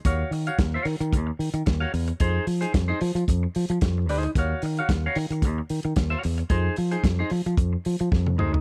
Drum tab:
HH |x-oxx-oxx-oxx-ox|x-oxx-oxx-oxx-ox|x-oxx-oxx-oxx-ox|x-oxx-oxx-ox----|
SD |----o-------o---|----o-------o---|----o-------o---|----o-------o---|
T1 |----------------|----------------|----------------|-------------o--|
T2 |----------------|----------------|----------------|--------------o-|
FT |----------------|----------------|----------------|---------------o|
BD |o---o---o---o---|o---o---o---o---|o---o---o---o---|o---o---o---o---|